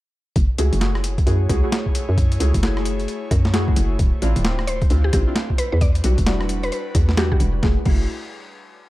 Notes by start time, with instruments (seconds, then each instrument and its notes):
0.36 fm bass F#1, analog synth pad A3 E4 G#4 C#5, kick, closed hi-hat
0.58 fm bass C#2, synth stab A3 E4 F#4 G#4, closed hi-hat
0.73 fm bass F#1, closed hi-hat
0.81 synth stab A3 E4 F#4 G#4, snare, closed hi-hat
0.95 cross-stick
1.04 closed hi-hat
1.18 kick, closed hi-hat
1.27 fm bass F#2, synth stab A3 E4 F#4 G#4, closed hi-hat
1.49 fm bass C#2, synth stab A3 E4 F#4 G#4, kick, cross-stick, closed hi-hat
1.63 synth stab A3 E4 F#4 G#4
1.72 snare, closed hi-hat
1.86 kick
1.95 closed hi-hat
2.09 fm bass F#2
2.18 kick, closed hi-hat
2.32 closed hi-hat
2.40 fm bass C#2, synth stab A3 E4 F#4 G#4, closed hi-hat
2.54 fm bass F#1, kick, closed hi-hat
2.63 synth stab A3 E4 F#4 G#4, snare, closed hi-hat
2.77 cross-stick
2.85 closed hi-hat
3.00 closed hi-hat
3.08 closed hi-hat
3.31 fm bass F#2, kick, cross-stick, closed hi-hat
3.45 snare
3.54 synth stab A3 E4 F#4 G#4, snare, closed hi-hat
3.68 synth stab A3 E4 F#4 G#4, kick
3.76 fm bass F#1, closed hi-hat
3.99 fm bass D1, analog synth pad F4 C5, kick, closed hi-hat
4.22 fm bass A1, synth stab C4 D4 E4 F4, closed hi-hat
4.36 fm bass D1, closed hi-hat
4.45 synth stab C4 D4 E4 F4, snare, closed hi-hat
4.59 cross-stick
4.67 synth pluck C5, closed hi-hat
4.82 kick, closed hi-hat
4.90 fm bass D2, synth stab C4 D4 E4 F4, closed hi-hat
5.04 synth pluck G4
5.13 fm bass A1, synth stab C4 D4 E4 F4, synth pluck G4, kick, cross-stick, closed hi-hat
5.27 synth stab C4 D4 E4 F4
5.36 snare, closed hi-hat
5.50 kick
5.58 analog synth pad G3 D4 F#4 B4, synth pluck B4, closed hi-hat
5.72 fm bass E2, synth pluck B4
5.81 synth pluck D5, kick, closed hi-hat
5.95 closed hi-hat
6.04 fm bass B1, synth stab G3 D4 E4 F#4, closed hi-hat
6.18 fm bass E1, kick, closed hi-hat
6.26 synth stab G3 D4 E4 F#4, snare, closed hi-hat
6.41 cross-stick
6.49 closed hi-hat
6.63 synth pluck B4, closed hi-hat
6.72 synth pluck B4, closed hi-hat
6.95 fm bass E2, kick, cross-stick, closed hi-hat
7.09 snare
7.17 synth stab G3 D4 E4 F#4, synth pluck G4, snare, closed hi-hat
7.32 synth stab G3 D4 E4 F#4, synth pluck G4, kick
7.40 fm bass E1, closed hi-hat
7.63 fm bass F#1, synth stab A3 E4 F#4 G#4, kick, snare
7.86 fm bass F#1, synth stab A3 E4 F#4 G#4, kick, crash